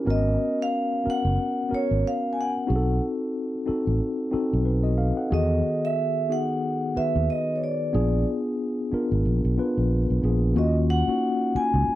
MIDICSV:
0, 0, Header, 1, 5, 480
1, 0, Start_track
1, 0, Tempo, 656455
1, 49, Time_signature, 4, 2, 24, 8
1, 8739, End_track
2, 0, Start_track
2, 0, Title_t, "Vibraphone"
2, 0, Program_c, 0, 11
2, 76, Note_on_c, 0, 75, 81
2, 416, Note_off_c, 0, 75, 0
2, 456, Note_on_c, 0, 77, 84
2, 792, Note_off_c, 0, 77, 0
2, 804, Note_on_c, 0, 78, 86
2, 1276, Note_on_c, 0, 73, 75
2, 1279, Note_off_c, 0, 78, 0
2, 1508, Note_off_c, 0, 73, 0
2, 1517, Note_on_c, 0, 77, 85
2, 1702, Note_on_c, 0, 80, 55
2, 1704, Note_off_c, 0, 77, 0
2, 1736, Note_off_c, 0, 80, 0
2, 1760, Note_on_c, 0, 78, 74
2, 2194, Note_off_c, 0, 78, 0
2, 3902, Note_on_c, 0, 75, 72
2, 4277, Note_on_c, 0, 76, 90
2, 4285, Note_off_c, 0, 75, 0
2, 4622, Note_on_c, 0, 78, 87
2, 4623, Note_off_c, 0, 76, 0
2, 5099, Note_on_c, 0, 76, 85
2, 5109, Note_off_c, 0, 78, 0
2, 5317, Note_off_c, 0, 76, 0
2, 5339, Note_on_c, 0, 75, 76
2, 5526, Note_on_c, 0, 73, 49
2, 5536, Note_off_c, 0, 75, 0
2, 5569, Note_off_c, 0, 73, 0
2, 5584, Note_on_c, 0, 74, 65
2, 6026, Note_off_c, 0, 74, 0
2, 7739, Note_on_c, 0, 75, 70
2, 7845, Note_off_c, 0, 75, 0
2, 7972, Note_on_c, 0, 78, 85
2, 8453, Note_on_c, 0, 80, 84
2, 8463, Note_off_c, 0, 78, 0
2, 8739, Note_off_c, 0, 80, 0
2, 8739, End_track
3, 0, Start_track
3, 0, Title_t, "Tine electric piano"
3, 0, Program_c, 1, 4
3, 0, Control_c, 1, 64, 127
3, 41, Note_on_c, 1, 59, 86
3, 45, Note_on_c, 1, 61, 72
3, 51, Note_on_c, 1, 66, 72
3, 54, Note_on_c, 1, 70, 89
3, 59, Control_c, 1, 64, 0
3, 190, Control_c, 1, 64, 127
3, 664, Note_off_c, 1, 59, 0
3, 666, Note_off_c, 1, 61, 0
3, 669, Note_off_c, 1, 66, 0
3, 670, Note_off_c, 1, 70, 0
3, 760, Note_on_c, 1, 59, 61
3, 764, Note_on_c, 1, 61, 55
3, 772, Note_on_c, 1, 66, 52
3, 774, Note_on_c, 1, 70, 65
3, 1177, Note_off_c, 1, 59, 0
3, 1179, Note_off_c, 1, 61, 0
3, 1183, Note_off_c, 1, 66, 0
3, 1184, Note_off_c, 1, 70, 0
3, 1237, Note_on_c, 1, 59, 62
3, 1242, Note_on_c, 1, 61, 58
3, 1249, Note_on_c, 1, 66, 59
3, 1250, Note_on_c, 1, 70, 74
3, 1861, Note_off_c, 1, 59, 0
3, 1864, Note_off_c, 1, 61, 0
3, 1867, Note_off_c, 1, 66, 0
3, 1868, Note_off_c, 1, 70, 0
3, 1952, Note_on_c, 1, 60, 82
3, 1955, Note_on_c, 1, 63, 81
3, 1963, Note_on_c, 1, 66, 78
3, 1966, Note_on_c, 1, 68, 72
3, 1976, Control_c, 1, 64, 0
3, 2017, Note_on_c, 1, 69, 90
3, 2022, Note_off_c, 1, 68, 0
3, 2097, Control_c, 1, 64, 127
3, 2579, Note_off_c, 1, 60, 0
3, 2581, Note_off_c, 1, 63, 0
3, 2584, Note_off_c, 1, 66, 0
3, 2611, Note_off_c, 1, 69, 0
3, 2676, Note_on_c, 1, 60, 66
3, 2681, Note_on_c, 1, 63, 69
3, 2687, Note_on_c, 1, 66, 65
3, 2689, Note_on_c, 1, 69, 75
3, 3095, Note_off_c, 1, 60, 0
3, 3097, Note_off_c, 1, 63, 0
3, 3100, Note_off_c, 1, 66, 0
3, 3101, Note_off_c, 1, 69, 0
3, 3154, Note_on_c, 1, 60, 83
3, 3161, Note_on_c, 1, 63, 76
3, 3164, Note_on_c, 1, 66, 69
3, 3170, Note_on_c, 1, 69, 86
3, 3395, Note_off_c, 1, 63, 0
3, 3401, Note_on_c, 1, 71, 58
3, 3404, Note_on_c, 1, 63, 48
3, 3406, Note_off_c, 1, 66, 0
3, 3408, Note_off_c, 1, 69, 0
3, 3535, Note_on_c, 1, 75, 65
3, 3536, Note_off_c, 1, 71, 0
3, 3538, Note_off_c, 1, 63, 0
3, 3544, Note_on_c, 1, 66, 53
3, 3574, Note_off_c, 1, 60, 0
3, 3636, Note_off_c, 1, 75, 0
3, 3640, Note_on_c, 1, 77, 65
3, 3641, Note_off_c, 1, 66, 0
3, 3644, Note_on_c, 1, 69, 50
3, 3775, Note_off_c, 1, 69, 0
3, 3775, Note_off_c, 1, 77, 0
3, 3781, Note_on_c, 1, 78, 55
3, 3784, Note_on_c, 1, 69, 44
3, 3880, Note_on_c, 1, 59, 86
3, 3886, Note_on_c, 1, 51, 80
3, 3891, Note_on_c, 1, 66, 75
3, 3892, Note_on_c, 1, 68, 97
3, 3897, Control_c, 1, 64, 0
3, 4011, Control_c, 1, 64, 127
3, 4012, Note_off_c, 1, 78, 0
3, 4013, Note_off_c, 1, 69, 0
3, 4503, Note_off_c, 1, 59, 0
3, 4506, Note_off_c, 1, 51, 0
3, 4509, Note_off_c, 1, 66, 0
3, 4509, Note_off_c, 1, 68, 0
3, 4598, Note_on_c, 1, 59, 63
3, 4600, Note_on_c, 1, 63, 54
3, 4609, Note_on_c, 1, 66, 60
3, 4611, Note_on_c, 1, 68, 62
3, 5016, Note_off_c, 1, 59, 0
3, 5017, Note_off_c, 1, 63, 0
3, 5022, Note_off_c, 1, 66, 0
3, 5022, Note_off_c, 1, 68, 0
3, 5080, Note_on_c, 1, 59, 63
3, 5087, Note_on_c, 1, 51, 58
3, 5092, Note_on_c, 1, 66, 56
3, 5094, Note_on_c, 1, 71, 70
3, 5704, Note_off_c, 1, 59, 0
3, 5707, Note_off_c, 1, 51, 0
3, 5710, Note_off_c, 1, 66, 0
3, 5711, Note_off_c, 1, 71, 0
3, 5799, Note_on_c, 1, 59, 85
3, 5804, Note_on_c, 1, 62, 83
3, 5807, Note_on_c, 1, 65, 73
3, 5812, Note_on_c, 1, 68, 96
3, 5818, Control_c, 1, 64, 0
3, 5949, Control_c, 1, 64, 127
3, 6423, Note_off_c, 1, 59, 0
3, 6425, Note_off_c, 1, 62, 0
3, 6427, Note_off_c, 1, 65, 0
3, 6430, Note_off_c, 1, 68, 0
3, 6520, Note_on_c, 1, 59, 73
3, 6528, Note_on_c, 1, 62, 66
3, 6533, Note_on_c, 1, 65, 62
3, 6538, Note_on_c, 1, 70, 79
3, 6937, Note_off_c, 1, 59, 0
3, 6941, Note_off_c, 1, 62, 0
3, 6944, Note_off_c, 1, 65, 0
3, 6946, Note_off_c, 1, 70, 0
3, 7001, Note_on_c, 1, 59, 72
3, 7005, Note_on_c, 1, 62, 71
3, 7011, Note_on_c, 1, 65, 66
3, 7015, Note_on_c, 1, 71, 82
3, 7418, Note_off_c, 1, 59, 0
3, 7419, Note_off_c, 1, 62, 0
3, 7422, Note_off_c, 1, 65, 0
3, 7424, Note_off_c, 1, 71, 0
3, 7476, Note_on_c, 1, 59, 62
3, 7485, Note_on_c, 1, 62, 60
3, 7486, Note_on_c, 1, 65, 60
3, 7495, Note_on_c, 1, 68, 74
3, 7688, Note_off_c, 1, 59, 0
3, 7693, Note_off_c, 1, 62, 0
3, 7693, Note_off_c, 1, 65, 0
3, 7697, Note_off_c, 1, 68, 0
3, 7718, Note_on_c, 1, 58, 90
3, 7720, Note_on_c, 1, 61, 80
3, 7728, Note_on_c, 1, 66, 99
3, 7729, Note_on_c, 1, 65, 76
3, 7738, Control_c, 1, 64, 0
3, 7871, Control_c, 1, 64, 127
3, 8032, Note_off_c, 1, 58, 0
3, 8033, Note_off_c, 1, 61, 0
3, 8037, Note_off_c, 1, 66, 0
3, 8038, Note_off_c, 1, 65, 0
3, 8100, Note_on_c, 1, 58, 67
3, 8103, Note_on_c, 1, 63, 61
3, 8105, Note_on_c, 1, 61, 61
3, 8110, Note_on_c, 1, 66, 73
3, 8739, Note_off_c, 1, 58, 0
3, 8739, Note_off_c, 1, 61, 0
3, 8739, Note_off_c, 1, 63, 0
3, 8739, Note_off_c, 1, 66, 0
3, 8739, End_track
4, 0, Start_track
4, 0, Title_t, "Fingered electric bass"
4, 0, Program_c, 2, 33
4, 51, Note_on_c, 2, 32, 81
4, 260, Note_off_c, 2, 32, 0
4, 912, Note_on_c, 2, 30, 72
4, 998, Note_off_c, 2, 30, 0
4, 1398, Note_on_c, 2, 32, 70
4, 1481, Note_off_c, 2, 32, 0
4, 1973, Note_on_c, 2, 35, 90
4, 2181, Note_off_c, 2, 35, 0
4, 2831, Note_on_c, 2, 33, 71
4, 2917, Note_off_c, 2, 33, 0
4, 3315, Note_on_c, 2, 35, 70
4, 3732, Note_off_c, 2, 35, 0
4, 3889, Note_on_c, 2, 40, 105
4, 4099, Note_off_c, 2, 40, 0
4, 5232, Note_on_c, 2, 39, 71
4, 5318, Note_off_c, 2, 39, 0
4, 5809, Note_on_c, 2, 34, 89
4, 6019, Note_off_c, 2, 34, 0
4, 6666, Note_on_c, 2, 32, 68
4, 6755, Note_off_c, 2, 32, 0
4, 6768, Note_on_c, 2, 34, 82
4, 6890, Note_off_c, 2, 34, 0
4, 6907, Note_on_c, 2, 35, 74
4, 6995, Note_off_c, 2, 35, 0
4, 7147, Note_on_c, 2, 34, 67
4, 7357, Note_off_c, 2, 34, 0
4, 7387, Note_on_c, 2, 35, 66
4, 7475, Note_off_c, 2, 35, 0
4, 7483, Note_on_c, 2, 34, 81
4, 7695, Note_off_c, 2, 34, 0
4, 7721, Note_on_c, 2, 39, 92
4, 8056, Note_off_c, 2, 39, 0
4, 8583, Note_on_c, 2, 37, 71
4, 8672, Note_off_c, 2, 37, 0
4, 8739, End_track
5, 0, Start_track
5, 0, Title_t, "Muted fingered electric bass strokes"
5, 779, Note_on_c, 9, 29, 41
5, 853, Note_off_c, 9, 29, 0
5, 1259, Note_on_c, 9, 29, 37
5, 1332, Note_off_c, 9, 29, 0
5, 2698, Note_on_c, 9, 29, 43
5, 2771, Note_off_c, 9, 29, 0
5, 3172, Note_on_c, 9, 29, 40
5, 3245, Note_off_c, 9, 29, 0
5, 5095, Note_on_c, 9, 29, 36
5, 5168, Note_off_c, 9, 29, 0
5, 6527, Note_on_c, 9, 29, 40
5, 6600, Note_off_c, 9, 29, 0
5, 8099, Note_on_c, 9, 29, 40
5, 8172, Note_off_c, 9, 29, 0
5, 8446, Note_on_c, 9, 29, 47
5, 8519, Note_off_c, 9, 29, 0
5, 8687, Note_on_c, 9, 29, 43
5, 8739, Note_off_c, 9, 29, 0
5, 8739, End_track
0, 0, End_of_file